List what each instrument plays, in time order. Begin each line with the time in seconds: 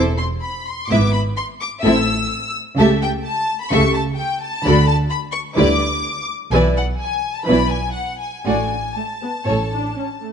Already playing: double bass section E1, cello section E2, viola section C4 E4, violin section A4 C5
0.18 violin section C6
0.41 violin section B5
0.66 violin section C6
0.88 double bass section G#1, cello section G#2, viola section B3 E4, violin section B4 E5 D6
1.12 violin section B5
1.36 violin section C6
1.61 violin section D6
1.83 double bass section A1, cello section A2, viola section C4 E4, violin section A4 E5 E6
2.77 double bass section C#2, cello section C#3, viola section A3 G4, violin section A4 E5 A5
3.02 violin section G5
3.25 violin section A5
3.62 violin section B5
3.71 double bass section C#2, cello section C#3, viola section A3 G4, violin section A4 E5 C#6
3.95 violin section A5
4.17 violin section G5
4.42 violin section A5
4.65 double bass section D2, cello section D3, viola section A3 F#4, violin section A4 D5 B5
4.88 violin section A5
5.10 violin section B5
5.32 violin section C#6
5.57 double bass section D2, cello section D3, viola section G3 E4, violin section B4 D5 D6
6.52 double bass section B1, cello section B2, viola section E3 E4, violin section B4 D5 G#5
6.76 violin section F#5
6.99 violin section G#5
7.35 violin section A5
7.46 double bass section B1, cello section B2, viola section E3 E4, violin section B4 D5 B5
7.70 violin section G#5
7.94 violin section F#5
8.20 violin section G#5
8.44 double bass section A1, cello section A2, viola section A3 D4, violin section F#4 D5 G#5
8.96 viola section A3, violin section A5
9.22 viola section B3
9.46 double bass section A1, cello section A2, viola section C#4, violin section A4 C#5
9.73 viola section D4
9.97 viola section C#4
10.22 viola section A3